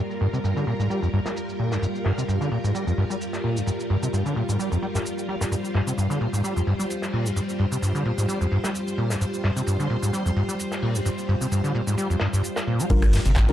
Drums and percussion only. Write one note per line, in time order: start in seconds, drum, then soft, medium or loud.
0.11 shaker soft
0.20 shaker medium
0.34 shaker medium
0.44 shaker medium
0.44 shaker soft
0.57 shaker soft
0.67 shaker medium
0.80 shaker medium
0.90 shaker medium
1.03 shaker soft
1.13 shaker medium
1.26 snare soft
1.26 shaker medium
1.36 shaker medium
1.49 shaker soft
1.59 shaker medium
1.72 snare soft
1.72 shaker medium
1.82 shaker medium
1.82 shaker soft
1.95 shaker soft
2.05 snare soft
2.05 shaker medium
2.18 closed hi-hat soft
2.18 shaker medium
2.28 shaker medium
2.28 shaker soft
2.42 shaker soft
2.52 shaker medium
2.65 shaker medium
2.75 shaker medium
2.75 shaker soft
2.88 shaker soft
2.98 shaker medium
3.11 shaker medium
3.21 shaker medium
3.21 shaker soft
3.33 snare soft
3.33 shaker soft
3.44 open hi-hat medium
3.57 shaker medium
3.66 shaker medium
3.68 shaker soft
3.80 shaker soft
3.90 shaker medium
4.03 shaker medium
4.14 shaker soft
4.14 shaker medium
4.26 shaker soft
4.37 shaker medium
4.49 shaker medium
4.59 shaker medium
4.59 shaker soft
4.72 shaker soft
4.82 shaker medium
4.95 snare soft
4.95 shaker medium
5.05 shaker medium
5.05 shaker soft
5.19 shaker soft
5.29 shaker medium
5.41 snare soft
5.41 shaker medium
5.52 shaker medium
5.52 shaker soft
5.65 shaker soft
5.74 snare medium
5.74 shaker medium
5.87 closed hi-hat soft
5.87 shaker medium
5.98 shaker medium
5.98 shaker soft
6.11 shaker soft
6.21 shaker medium
6.34 shaker medium
6.44 shaker medium
6.57 shaker soft
6.67 shaker medium
6.80 shaker medium
6.90 shaker medium
7.02 snare soft
7.02 shaker soft
7.13 open hi-hat medium
7.26 shaker medium
7.37 shaker medium
7.49 shaker soft
7.59 shaker medium
7.72 shaker medium
7.82 shaker medium
7.95 shaker soft
8.05 shaker medium
8.18 shaker medium
8.28 shaker medium
8.42 shaker soft
8.52 shaker medium
8.64 snare medium
8.64 shaker medium
8.74 shaker medium
8.88 shaker soft
8.98 shaker medium
9.10 snare soft
9.10 shaker medium
9.21 shaker medium
9.34 shaker soft
9.43 snare soft
9.43 shaker medium
9.56 closed hi-hat soft
9.56 shaker medium
9.67 shaker medium
9.80 shaker soft
9.90 shaker medium
10.03 shaker medium
10.14 shaker medium
10.26 shaker soft
10.36 shaker medium
10.49 shaker medium
10.59 shaker medium
10.72 snare soft
10.72 shaker soft
10.82 open hi-hat medium
10.95 shaker medium
11.05 shaker medium
11.18 shaker soft
11.29 shaker medium
11.42 shaker medium
11.52 shaker medium
11.65 shaker soft
11.75 shaker medium
11.88 shaker medium
11.97 shaker medium
12.11 shaker soft
12.20 snare medium
12.20 shaker medium
12.34 shaker medium
12.43 shaker medium
12.56 snare medium
12.56 shaker medium
12.56 shaker soft
12.80 shaker medium
12.90 kick loud
12.90 closed hi-hat medium
12.90 crash loud
12.90 shaker medium
12.90 shaker soft
13.02 finger snap medium
13.02 cross-stick medium
13.02 closed hi-hat soft
13.02 shaker soft
13.13 snare medium
13.13 open hi-hat loud
13.13 ride medium
13.13 shaker medium
13.25 closed hi-hat soft
13.25 closed hi-hat medium
13.25 shaker soft
13.36 kick loud
13.36 cross-stick medium
13.36 snare loud
13.36 clap loud
13.36 closed hi-hat medium
13.36 shaker medium
13.36 shaker soft
13.49 closed hi-hat soft